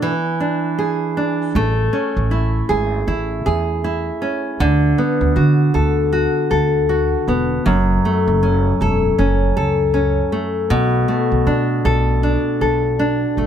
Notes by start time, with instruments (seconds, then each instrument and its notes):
Already playing: nylon-string guitar B2 A3 D4 A4
0.02 nylon-string guitar E3
0.40 nylon-string guitar D4
0.79 nylon-string guitar G#4
1.17 nylon-string guitar D4
1.55 upright bass A1, nylon-string guitar A3
1.93 nylon-string guitar C#4
2.17 upright bass A1
2.31 nylon-string guitar E4
2.69 upright bass G#1, nylon-string guitar G#4
3.07 upright bass A1, nylon-string guitar E4
3.46 upright bass E2, nylon-string guitar G#4
3.84 nylon-string guitar E4
4.22 nylon-string guitar C#4
4.60 upright bass D2, nylon-string guitar D3
4.98 nylon-string guitar B3
5.21 upright bass D2
5.36 upright bass D3, nylon-string guitar F#4
5.74 upright bass D2, nylon-string guitar A4
6.13 nylon-string guitar F#4
6.51 upright bass D2, nylon-string guitar A4
6.89 nylon-string guitar F#4
7.28 upright bass E1, nylon-string guitar B3
7.66 upright bass F#1, nylon-string guitar F#2
8.05 nylon-string guitar A3
8.28 upright bass F#1
8.43 nylon-string guitar C#4
8.81 upright bass E1, nylon-string guitar A4
9.18 upright bass F#1, nylon-string guitar C#4
9.57 upright bass C#2, nylon-string guitar A4
9.94 nylon-string guitar C#4
10.32 nylon-string guitar A3
10.70 upright bass B1, nylon-string guitar B2
11.08 nylon-string guitar A3
11.32 upright bass B1
11.47 upright bass B2, nylon-string guitar D4
11.85 upright bass B1, nylon-string guitar A4
12.23 nylon-string guitar D4
12.61 upright bass B1, nylon-string guitar A4
12.99 nylon-string guitar D4
13.37 upright bass G#1, nylon-string guitar A3